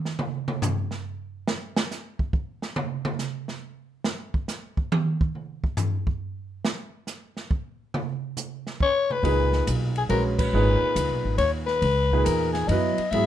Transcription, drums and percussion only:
0.05 snare soft
0.19 mid tom loud
0.48 mid tom loud
0.62 floor tom loud
0.62 hi-hat pedal medium
0.91 snare soft
1.48 snare loud
1.76 snare loud
1.91 snare soft
1.91 hi-hat pedal medium
2.19 kick medium
2.33 kick medium
2.62 snare medium
2.76 mid tom loud
3.05 mid tom loud
3.19 snare soft
3.19 hi-hat pedal medium
3.48 snare soft
4.04 snare loud
4.34 kick medium
4.48 snare medium
4.48 hi-hat pedal medium
4.77 kick medium
4.92 high tom loud
5.21 kick medium
5.35 mid tom soft
5.64 kick medium
5.77 floor tom loud
5.77 hi-hat pedal medium
6.07 kick medium
6.65 snare loud
7.07 snare soft
7.07 hi-hat pedal medium
7.37 snare soft
7.51 kick medium
7.94 mid tom loud
8.37 hi-hat pedal medium
8.37 mid tom soft
8.67 snare soft
8.80 kick medium
9.10 mid tom medium
9.25 ride medium
9.53 snare soft
9.67 hi-hat pedal medium
9.67 ride medium
9.96 ride soft
10.09 ride medium
10.39 kick medium
10.39 crash medium
10.96 hi-hat pedal medium
10.96 ride medium
11.38 ride medium
11.68 snare soft
11.82 ride medium
12.12 kick soft
12.26 hi-hat pedal medium
12.26 ride medium
12.54 snare soft
12.54 ride soft
12.69 ride medium
12.98 ride soft
13.12 ride medium

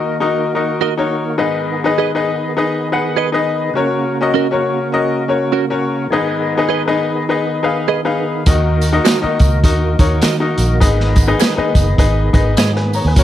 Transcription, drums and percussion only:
8.46 kick loud
8.46 closed hi-hat loud
8.46 tambourine medium
8.81 closed hi-hat medium
8.81 tambourine medium
9.05 snare loud
9.05 clap medium
9.05 closed hi-hat medium
9.05 tambourine medium
9.39 kick medium
9.39 closed hi-hat medium
9.39 tambourine medium
9.64 kick medium
9.64 closed hi-hat medium
9.64 tambourine soft
9.99 kick medium
9.99 closed hi-hat medium
9.99 tambourine soft
10.22 snare loud
10.22 clap medium
10.22 closed hi-hat medium
10.22 tambourine medium
10.58 closed hi-hat medium
10.58 tambourine medium
10.81 kick loud
10.81 closed hi-hat loud
10.81 tambourine medium
11.00 snare soft
11.16 kick medium
11.16 closed hi-hat medium
11.16 tambourine medium
11.40 snare loud
11.40 clap medium
11.40 closed hi-hat medium
11.40 tambourine medium
11.75 kick medium
11.75 closed hi-hat medium
11.75 tambourine medium
11.98 kick medium
11.98 closed hi-hat medium
11.98 tambourine soft
12.34 kick medium
12.34 closed hi-hat medium
12.57 snare loud
12.57 clap medium
12.57 closed hi-hat medium
12.57 tambourine medium
12.76 snare soft
12.93 open hi-hat medium
12.93 tambourine medium
13.16 kick loud
13.16 closed hi-hat loud
13.16 tambourine medium

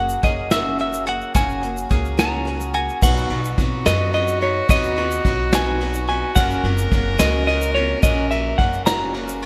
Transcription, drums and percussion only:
0.09 shaker medium
0.23 kick medium
0.23 closed hi-hat medium
0.23 shaker soft
0.51 snare loud
0.51 closed hi-hat medium
0.51 shaker medium
0.79 closed hi-hat medium
0.93 shaker medium
1.07 closed hi-hat medium
1.21 shaker soft
1.35 kick medium
1.35 closed hi-hat medium
1.35 shaker medium
1.49 shaker soft
1.63 closed hi-hat medium
1.63 shaker soft
1.77 shaker medium
1.91 kick medium
1.91 closed hi-hat medium
1.91 shaker soft
2.05 shaker soft
2.19 snare loud
2.19 closed hi-hat medium
2.19 shaker medium
2.47 closed hi-hat medium
2.61 shaker medium
2.75 closed hi-hat medium
2.75 shaker soft
2.89 shaker soft
3.02 kick loud
3.02 crash loud
3.02 shaker medium
3.17 shaker soft
3.30 ride medium
3.45 shaker medium
3.58 kick medium
3.58 ride medium
3.58 shaker soft
3.86 snare loud
3.86 ride medium
3.86 shaker medium
4.13 ride medium
4.28 shaker medium
4.41 ride medium
4.69 kick loud
4.69 ride medium
4.69 shaker medium
4.84 shaker soft
4.98 ride medium
5.11 shaker medium
5.25 kick medium
5.25 ride medium
5.25 shaker soft
5.53 snare loud
5.53 ride medium
5.53 shaker medium
5.81 ride medium
5.94 shaker medium
6.09 ride medium
6.36 kick loud
6.36 ride medium
6.36 shaker medium
6.50 shaker soft
6.64 ride medium
6.78 shaker medium
6.92 kick medium
6.92 ride medium
6.92 shaker soft
7.19 snare loud
7.19 ride medium
7.19 shaker medium
7.48 ride medium
7.62 shaker medium
7.75 ride medium
8.03 kick loud
8.03 ride medium
8.03 shaker medium
8.31 ride medium
8.31 shaker soft
8.59 kick medium
8.59 ride medium
8.73 shaker soft
8.87 snare loud
8.87 ride medium
8.87 shaker medium
9.14 ride medium
9.29 shaker medium
9.42 ride medium

